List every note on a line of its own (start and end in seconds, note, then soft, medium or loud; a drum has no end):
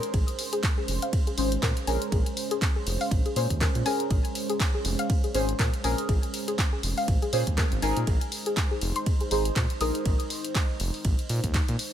0.00 0.10 G#3 medium
0.00 1.35 C#4 medium
0.00 1.35 G#4 medium
0.00 1.35 A#4 loud
0.00 8.03 C5 medium
0.00 closed hi-hat medium
0.14 0.24 A#1 loud
0.14 11.93 G#3 medium
0.14 8.03 C#4 medium
0.14 0.20 G#4 medium
0.14 kick loud
0.14 ride medium
0.28 closed hi-hat medium
0.39 open hi-hat loud
0.53 0.56 G#4 loud
0.53 closed hi-hat medium
0.63 kick loud
0.63 clap loud
0.63 ride medium
0.78 0.80 G#4 medium
0.88 0.99 F1 medium
0.88 open hi-hat loud
1.02 1.05 F5 loud
1.02 closed hi-hat medium
1.13 kick loud
1.13 ride medium
1.27 1.32 G#4 medium
1.27 closed hi-hat soft
1.37 1.57 G#1 loud
1.37 1.49 C#4 medium
1.37 1.49 G#4 medium
1.37 1.49 C5 loud
1.37 open hi-hat loud
1.52 closed hi-hat medium
1.63 1.73 A#2 medium
1.63 1.72 A#4 medium
1.63 kick loud
1.63 clap loud
1.63 ride medium
1.77 closed hi-hat medium
1.87 1.98 A#1 loud
1.87 3.33 C#4 medium
1.87 3.34 G#4 medium
1.87 3.34 A#4 loud
1.87 1.94 G#5 loud
1.87 open hi-hat loud
2.02 closed hi-hat medium
2.12 2.23 A#1 loud
2.12 2.19 G#4 medium
2.12 kick loud
2.12 ride medium
2.26 closed hi-hat medium
2.37 open hi-hat loud
2.51 2.54 G#4 loud
2.51 closed hi-hat medium
2.62 kick loud
2.62 clap loud
2.62 ride medium
2.76 2.79 G#4 medium
2.87 2.97 F1 medium
2.87 open hi-hat loud
3.01 3.04 F5 loud
3.01 open hi-hat medium
3.11 3.22 A#1 medium
3.11 kick loud
3.11 ride medium
3.26 3.30 G#4 medium
3.26 closed hi-hat soft
3.36 3.47 A#2 loud
3.36 3.47 C#4 medium
3.36 3.47 G#4 medium
3.36 3.48 C5 medium
3.36 open hi-hat loud
3.50 3.68 D#2 medium
3.50 kick medium
3.50 closed hi-hat medium
3.61 3.70 A#4 medium
3.61 kick loud
3.61 clap loud
3.61 ride medium
3.75 3.83 A#2 medium
3.75 closed hi-hat medium
3.85 5.32 C#4 medium
3.85 5.32 G#4 medium
3.85 5.32 A#4 loud
3.85 3.92 G#5 loud
3.85 open hi-hat loud
4.00 closed hi-hat medium
4.10 4.21 A#1 loud
4.10 4.17 G#4 medium
4.10 kick loud
4.10 ride medium
4.25 closed hi-hat medium
4.35 open hi-hat loud
4.49 4.52 G#4 loud
4.49 closed hi-hat medium
4.60 kick loud
4.60 clap loud
4.60 ride medium
4.74 4.77 G#4 medium
4.85 4.95 F1 medium
4.85 open hi-hat loud
4.99 5.02 F5 loud
4.99 closed hi-hat medium
5.10 kick loud
5.10 ride medium
5.24 5.29 G#4 medium
5.24 closed hi-hat soft
5.34 5.54 G#1 loud
5.34 5.46 C#4 medium
5.34 5.46 G#4 medium
5.34 5.46 C5 medium
5.34 open hi-hat loud
5.49 closed hi-hat medium
5.59 5.70 A#2 medium
5.59 5.69 A#4 medium
5.59 kick loud
5.59 clap loud
5.59 ride medium
5.74 closed hi-hat medium
5.83 5.95 A#1 loud
5.83 7.30 C#4 medium
5.83 7.30 G#4 medium
5.83 7.31 A#4 loud
5.83 5.90 G#5 loud
5.83 open hi-hat loud
5.98 closed hi-hat medium
6.09 6.19 A#1 loud
6.09 6.15 G#4 medium
6.09 kick loud
6.09 ride medium
6.23 closed hi-hat medium
6.34 open hi-hat loud
6.48 6.51 G#4 loud
6.48 closed hi-hat medium
6.58 kick loud
6.58 clap loud
6.58 ride medium
6.73 6.75 G#4 medium
6.83 6.94 F1 medium
6.83 open hi-hat loud
6.97 7.00 F5 loud
6.97 open hi-hat medium
7.08 7.19 A#1 medium
7.08 kick loud
7.08 ride medium
7.22 7.27 G#4 medium
7.22 closed hi-hat soft
7.33 7.43 A#2 loud
7.33 7.44 C#4 medium
7.33 7.44 G#4 medium
7.33 7.44 C5 medium
7.33 open hi-hat loud
7.47 7.64 D#2 medium
7.47 kick medium
7.47 closed hi-hat medium
7.58 7.67 A#4 medium
7.58 kick loud
7.58 clap loud
7.58 ride medium
7.72 7.80 G#1 medium
7.72 closed hi-hat soft
7.82 7.93 G#1 loud
7.82 9.28 D#4 medium
7.82 9.29 G#4 medium
7.82 9.29 A#4 loud
7.82 7.89 G#5 loud
7.82 open hi-hat loud
7.97 8.05 A#2 medium
7.97 closed hi-hat medium
8.07 8.18 A#1 loud
8.07 11.93 D#4 medium
8.07 8.14 G#4 medium
8.07 11.93 C5 medium
8.07 kick loud
8.07 ride medium
8.21 closed hi-hat medium
8.32 open hi-hat loud
8.46 8.49 G#4 loud
8.46 closed hi-hat medium
8.57 kick loud
8.57 clap loud
8.57 ride medium
8.71 8.74 G#4 medium
8.81 8.92 F1 medium
8.81 open hi-hat loud
8.96 8.99 C6 loud
8.96 closed hi-hat medium
9.06 kick loud
9.06 ride medium
9.21 9.25 G#4 medium
9.21 closed hi-hat soft
9.31 9.50 G#1 loud
9.31 9.42 D#4 medium
9.31 9.42 G#4 medium
9.31 9.43 C5 loud
9.31 open hi-hat loud
9.45 closed hi-hat medium
9.56 9.67 A#2 medium
9.56 9.65 C5 medium
9.56 kick loud
9.56 clap loud
9.56 ride medium
9.70 closed hi-hat medium
9.80 9.91 A#1 loud
9.80 10.30 D#4 medium
9.80 10.30 G#4 medium
9.80 10.30 A#4 loud
9.80 9.87 D#6 loud
9.80 open hi-hat loud
9.95 closed hi-hat medium
10.05 10.16 A#1 loud
10.05 kick loud
10.05 ride medium
10.20 closed hi-hat medium
10.30 open hi-hat loud
10.45 closed hi-hat medium
10.55 kick loud
10.55 clap loud
10.55 ride medium
10.80 10.90 F1 medium
10.80 open hi-hat loud
10.94 open hi-hat medium
11.05 11.15 A#1 medium
11.05 kick loud
11.05 ride medium
11.19 closed hi-hat soft
11.29 11.40 A#2 loud
11.29 open hi-hat loud
11.44 11.61 D#2 medium
11.44 kick medium
11.44 closed hi-hat medium
11.54 kick loud
11.54 clap loud
11.54 ride medium
11.69 11.76 A#2 medium
11.69 closed hi-hat medium
11.79 open hi-hat loud